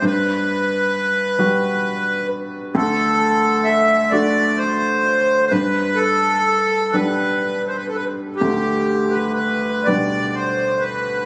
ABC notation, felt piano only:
X:1
M:6/8
L:1/8
Q:3/8=43
K:G
V:1 name="Felt piano" clef=bass
G,,3 [G,B,F]3 | D,,3 [A,DF]3 | G,,3 [G,B,D]3 | D,,3 [B,,G,D]3 |]